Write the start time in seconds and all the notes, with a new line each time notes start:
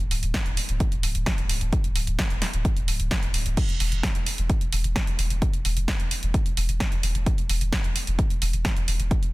0.00 D1
0.11 D1, open hi-hat
0.23 D1, closed hi-hat
0.34 kick, snare, closed hi-hat
0.46 D1, closed hi-hat
0.57 open hi-hat
0.69 D1, closed hi-hat
0.80 kick, closed hi-hat
0.92 D1, closed hi-hat
1.03 D1, open hi-hat
1.15 D1, closed hi-hat
1.26 kick, snare, closed hi-hat
1.38 D1, closed hi-hat
1.49 D1, open hi-hat
1.61 D1, closed hi-hat
1.73 kick, closed hi-hat
1.84 D1, closed hi-hat
1.96 D1, open hi-hat
2.07 D1, closed hi-hat
2.19 kick, snare, closed hi-hat
2.30 D1, closed hi-hat
2.42 snare, open hi-hat
2.53 D1, closed hi-hat
2.65 kick, closed hi-hat
2.77 D1, closed hi-hat
2.88 D1, open hi-hat
3.00 D1, closed hi-hat
3.11 kick, snare, closed hi-hat
3.23 D1, closed hi-hat
3.34 D1, open hi-hat
3.46 D1, closed hi-hat
3.57 kick, closed hi-hat, crash
3.69 E1, closed hi-hat
3.80 E1, open hi-hat
3.92 E1, closed hi-hat
4.03 kick, snare, closed hi-hat
4.15 E1, closed hi-hat
4.26 open hi-hat
4.38 E1, closed hi-hat
4.50 kick, closed hi-hat
4.61 E1, closed hi-hat
4.73 E1, open hi-hat
4.84 E1, closed hi-hat
4.96 kick, snare, closed hi-hat
5.07 E1, closed hi-hat
5.19 E1, open hi-hat
5.30 E1, closed hi-hat
5.42 kick, closed hi-hat
5.54 E1, closed hi-hat
5.65 E1, open hi-hat
5.77 E1, closed hi-hat
5.88 kick, snare, closed hi-hat
6.00 E1, closed hi-hat
6.11 open hi-hat
6.23 E1, closed hi-hat
6.34 kick, closed hi-hat
6.46 E1, closed hi-hat
6.57 E1, open hi-hat
6.69 E1, closed hi-hat
6.80 kick, snare, closed hi-hat
6.92 E1, closed hi-hat
7.03 E1, open hi-hat
7.15 E1, closed hi-hat
7.26 kick, closed hi-hat
7.38 E1, closed hi-hat
7.49 E1, open hi-hat
7.61 E1, closed hi-hat
7.73 kick, snare, closed hi-hat
7.84 E1, closed hi-hat
7.96 open hi-hat
8.07 E1, closed hi-hat
8.19 kick, closed hi-hat
8.30 E1, closed hi-hat
8.42 E1, open hi-hat
8.53 E1, closed hi-hat
8.65 kick, snare, closed hi-hat
8.77 E1, closed hi-hat
8.88 E1, open hi-hat
9.00 E1, closed hi-hat
9.11 kick, closed hi-hat
9.23 E1, closed hi-hat